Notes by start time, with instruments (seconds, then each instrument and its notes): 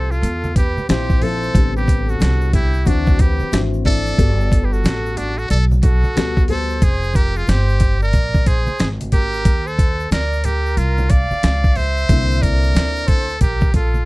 Already playing: upright bass C2, muted trumpet A4, flute C5
0.11 muted trumpet F4, flute A4, shaker
0.22 upright bass E2, closed hi-hat, shaker
0.44 high conga, shaker
0.55 muted trumpet G4, flute B4, kick, closed hi-hat, low conga, shaker
0.77 muted upright bass stroke, high conga, shaker
0.88 upright bass A#1, upright piano F3 C4 E4 G4, muted trumpet G4, flute C5, snare, closed hi-hat, shaker
1.10 kick, shaker
1.22 upright piano F3 C4 E4 A4, muted trumpet A4, flute C5, open hi-hat, low conga, shaker
1.43 shaker
1.55 upright bass A1, upright piano D3 G3 B3 C4, kick, closed hi-hat, shaker
1.75 muted trumpet G4, flute B4, shaker
1.87 kick, closed hi-hat, high conga, shaker
2.08 muted trumpet F#4, flute A4, shaker
2.20 upright bass C2, snare, closed hi-hat, high conga, shaker
2.41 shaker
2.53 muted trumpet E4, flute G4, kick, closed hi-hat, low conga, shaker
2.74 shaker
2.85 upright bass D2, upright piano E3 C4 D4 F#4, muted trumpet D4, flute F#4, kick, closed hi-hat, shaker
3.07 kick, high conga, shaker
3.18 muted trumpet G4, flute B4, kick, closed hi-hat, low conga, shaker
3.40 muted upright bass stroke, high conga, shaker
3.52 upright bass G#1, upright piano E3 C4 D4 F#4, snare, closed hi-hat, shaker
3.74 shaker
3.85 upright piano E3 C4 D4 E4, muted trumpet A4, flute D5, kick, open hi-hat, low conga, shaker
4.07 shaker
4.17 upright bass G1, upright piano G3 B3 F#4 A4, kick, closed hi-hat, shaker
4.41 shaker
4.51 kick, closed hi-hat, high conga, shaker
4.63 muted trumpet G4, flute B4
4.72 muted trumpet F#4, flute A4, shaker
4.84 upright bass A1, snare, closed hi-hat, high conga, shaker
5.06 shaker
5.17 muted trumpet D4, flute F#4, closed hi-hat, low conga, shaker
5.38 muted trumpet F#4, flute A4, shaker
5.49 upright bass B1, muted trumpet A4, flute D5, closed hi-hat, shaker
5.71 high conga, shaker
5.83 muted trumpet F#4, flute A4, kick, closed hi-hat, low conga, shaker
6.04 muted upright bass stroke, high conga, shaker
6.16 upright bass D2, upright piano G3 B3 F#4 A4, snare, closed hi-hat, shaker
6.37 kick, shaker
6.48 upright piano G3 B3 F#4 A4, muted trumpet A4, flute C5, open hi-hat, low conga, shaker
6.70 shaker
6.82 upright bass F1, muted trumpet G#4, flute C5, kick, closed hi-hat, shaker
7.03 shaker
7.14 muted trumpet G4, flute A#4, kick, closed hi-hat, high conga, shaker
7.36 muted trumpet F4, flute G#4, shaker
7.47 upright bass G1, muted trumpet G4, flute C5, snare, closed hi-hat, high conga, shaker
7.69 shaker
7.80 kick, closed hi-hat, low conga, shaker
8.01 muted trumpet A#4, flute D5, shaker
8.13 upright bass A#1, kick, closed hi-hat, shaker
8.34 kick, high conga, shaker
8.46 muted trumpet G#4, flute C5, kick, closed hi-hat, low conga, shaker
8.67 muted upright bass stroke, high conga, shaker
8.79 upright bass G#1, snare, closed hi-hat, shaker
9.01 closed hi-hat, high conga, shaker
9.12 muted trumpet G4, flute A#4, kick, closed hi-hat, low conga, shaker
9.33 shaker
9.45 upright bass D#2, kick, closed hi-hat, shaker
9.66 muted trumpet A4, flute C5, shaker
9.79 kick, closed hi-hat, high conga, shaker
10.00 shaker
10.11 upright bass D2, muted trumpet A#4, flute D5, snare, closed hi-hat, high conga, shaker
10.33 shaker
10.44 muted trumpet G4, flute A#4, closed hi-hat, low conga, shaker
10.66 shaker
10.77 upright bass C2, muted trumpet F4, flute A#4, closed hi-hat, shaker
10.98 high conga, shaker
11.10 muted trumpet D5, flute F5, kick, closed hi-hat, low conga, shaker
11.31 muted upright bass stroke, high conga, shaker
11.43 upright bass C#2, snare, closed hi-hat, shaker
11.64 kick, shaker
11.76 muted trumpet C5, flute E5, open hi-hat, low conga, shaker
11.97 shaker
12.09 upright bass C2, upright piano D3 A#3 C4 E4, kick, closed hi-hat, shaker
12.31 shaker
12.41 muted trumpet A#4, flute D5, kick, closed hi-hat, high conga, shaker
12.63 shaker
12.75 upright bass D2, snare, closed hi-hat, high conga, shaker
12.96 shaker
13.07 muted trumpet A4, flute C5, kick, closed hi-hat, low conga, shaker
13.29 shaker
13.40 upright bass A#1, muted trumpet G4, flute A#4, kick, closed hi-hat, shaker
13.61 kick, high conga, shaker
13.74 muted trumpet F4, flute A4, kick, closed hi-hat, low conga, shaker
13.94 high conga, shaker